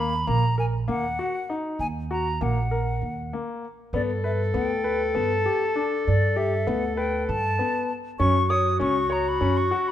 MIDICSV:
0, 0, Header, 1, 5, 480
1, 0, Start_track
1, 0, Tempo, 609137
1, 1421, Time_signature, 7, 3, 24, 8
1, 7815, End_track
2, 0, Start_track
2, 0, Title_t, "Flute"
2, 0, Program_c, 0, 73
2, 0, Note_on_c, 0, 83, 84
2, 214, Note_on_c, 0, 82, 92
2, 226, Note_off_c, 0, 83, 0
2, 456, Note_off_c, 0, 82, 0
2, 467, Note_on_c, 0, 80, 68
2, 520, Note_off_c, 0, 80, 0
2, 704, Note_on_c, 0, 78, 87
2, 1212, Note_off_c, 0, 78, 0
2, 1420, Note_on_c, 0, 80, 87
2, 1474, Note_off_c, 0, 80, 0
2, 1667, Note_on_c, 0, 82, 79
2, 1913, Note_on_c, 0, 78, 68
2, 1925, Note_off_c, 0, 82, 0
2, 2629, Note_off_c, 0, 78, 0
2, 3112, Note_on_c, 0, 74, 71
2, 3165, Note_off_c, 0, 74, 0
2, 3348, Note_on_c, 0, 76, 62
2, 3402, Note_off_c, 0, 76, 0
2, 3579, Note_on_c, 0, 79, 66
2, 4061, Note_on_c, 0, 81, 81
2, 4073, Note_off_c, 0, 79, 0
2, 4603, Note_off_c, 0, 81, 0
2, 4784, Note_on_c, 0, 74, 82
2, 5021, Note_on_c, 0, 76, 74
2, 5033, Note_off_c, 0, 74, 0
2, 5260, Note_on_c, 0, 78, 71
2, 5272, Note_off_c, 0, 76, 0
2, 5486, Note_off_c, 0, 78, 0
2, 5491, Note_on_c, 0, 79, 71
2, 5720, Note_off_c, 0, 79, 0
2, 5735, Note_on_c, 0, 81, 97
2, 6247, Note_off_c, 0, 81, 0
2, 6455, Note_on_c, 0, 85, 104
2, 6698, Note_on_c, 0, 87, 86
2, 6709, Note_off_c, 0, 85, 0
2, 6939, Note_off_c, 0, 87, 0
2, 6942, Note_on_c, 0, 85, 89
2, 7189, Note_on_c, 0, 82, 79
2, 7201, Note_off_c, 0, 85, 0
2, 7315, Note_on_c, 0, 83, 84
2, 7327, Note_off_c, 0, 82, 0
2, 7543, Note_on_c, 0, 85, 79
2, 7555, Note_off_c, 0, 83, 0
2, 7788, Note_on_c, 0, 83, 78
2, 7800, Note_off_c, 0, 85, 0
2, 7815, Note_off_c, 0, 83, 0
2, 7815, End_track
3, 0, Start_track
3, 0, Title_t, "Clarinet"
3, 0, Program_c, 1, 71
3, 3113, Note_on_c, 1, 69, 98
3, 6222, Note_off_c, 1, 69, 0
3, 6462, Note_on_c, 1, 66, 84
3, 7815, Note_off_c, 1, 66, 0
3, 7815, End_track
4, 0, Start_track
4, 0, Title_t, "Grand piano"
4, 0, Program_c, 2, 0
4, 0, Note_on_c, 2, 58, 66
4, 93, Note_off_c, 2, 58, 0
4, 215, Note_on_c, 2, 58, 64
4, 336, Note_off_c, 2, 58, 0
4, 456, Note_on_c, 2, 70, 67
4, 577, Note_off_c, 2, 70, 0
4, 692, Note_on_c, 2, 58, 72
4, 815, Note_off_c, 2, 58, 0
4, 937, Note_on_c, 2, 66, 65
4, 1059, Note_off_c, 2, 66, 0
4, 1179, Note_on_c, 2, 63, 68
4, 1421, Note_off_c, 2, 63, 0
4, 1660, Note_on_c, 2, 66, 60
4, 1781, Note_off_c, 2, 66, 0
4, 1899, Note_on_c, 2, 58, 63
4, 2021, Note_off_c, 2, 58, 0
4, 2138, Note_on_c, 2, 70, 64
4, 2381, Note_off_c, 2, 70, 0
4, 2627, Note_on_c, 2, 58, 61
4, 2868, Note_off_c, 2, 58, 0
4, 3103, Note_on_c, 2, 59, 74
4, 3224, Note_off_c, 2, 59, 0
4, 3341, Note_on_c, 2, 71, 59
4, 3463, Note_off_c, 2, 71, 0
4, 3578, Note_on_c, 2, 59, 69
4, 3700, Note_off_c, 2, 59, 0
4, 3815, Note_on_c, 2, 71, 61
4, 3938, Note_off_c, 2, 71, 0
4, 4056, Note_on_c, 2, 59, 69
4, 4179, Note_off_c, 2, 59, 0
4, 4300, Note_on_c, 2, 67, 61
4, 4422, Note_off_c, 2, 67, 0
4, 4535, Note_on_c, 2, 62, 65
4, 4779, Note_off_c, 2, 62, 0
4, 5013, Note_on_c, 2, 67, 62
4, 5137, Note_off_c, 2, 67, 0
4, 5255, Note_on_c, 2, 59, 67
4, 5378, Note_off_c, 2, 59, 0
4, 5495, Note_on_c, 2, 71, 65
4, 5738, Note_off_c, 2, 71, 0
4, 5981, Note_on_c, 2, 59, 66
4, 6223, Note_off_c, 2, 59, 0
4, 6458, Note_on_c, 2, 61, 79
4, 6579, Note_off_c, 2, 61, 0
4, 6699, Note_on_c, 2, 73, 67
4, 6820, Note_off_c, 2, 73, 0
4, 6931, Note_on_c, 2, 61, 75
4, 7054, Note_off_c, 2, 61, 0
4, 7168, Note_on_c, 2, 73, 68
4, 7291, Note_off_c, 2, 73, 0
4, 7413, Note_on_c, 2, 61, 74
4, 7535, Note_off_c, 2, 61, 0
4, 7653, Note_on_c, 2, 66, 70
4, 7775, Note_off_c, 2, 66, 0
4, 7815, End_track
5, 0, Start_track
5, 0, Title_t, "Upright bass"
5, 0, Program_c, 3, 32
5, 0, Note_on_c, 3, 39, 93
5, 184, Note_off_c, 3, 39, 0
5, 216, Note_on_c, 3, 34, 93
5, 668, Note_off_c, 3, 34, 0
5, 696, Note_on_c, 3, 39, 78
5, 923, Note_off_c, 3, 39, 0
5, 1413, Note_on_c, 3, 39, 82
5, 1868, Note_off_c, 3, 39, 0
5, 1900, Note_on_c, 3, 34, 85
5, 2352, Note_off_c, 3, 34, 0
5, 2379, Note_on_c, 3, 39, 69
5, 2606, Note_off_c, 3, 39, 0
5, 3097, Note_on_c, 3, 43, 86
5, 3551, Note_off_c, 3, 43, 0
5, 3578, Note_on_c, 3, 38, 91
5, 4031, Note_off_c, 3, 38, 0
5, 4062, Note_on_c, 3, 43, 67
5, 4289, Note_off_c, 3, 43, 0
5, 4788, Note_on_c, 3, 43, 84
5, 5236, Note_off_c, 3, 43, 0
5, 5259, Note_on_c, 3, 38, 93
5, 5712, Note_off_c, 3, 38, 0
5, 5743, Note_on_c, 3, 43, 87
5, 5968, Note_off_c, 3, 43, 0
5, 6460, Note_on_c, 3, 42, 90
5, 6910, Note_off_c, 3, 42, 0
5, 6942, Note_on_c, 3, 37, 89
5, 7390, Note_off_c, 3, 37, 0
5, 7416, Note_on_c, 3, 42, 75
5, 7642, Note_off_c, 3, 42, 0
5, 7815, End_track
0, 0, End_of_file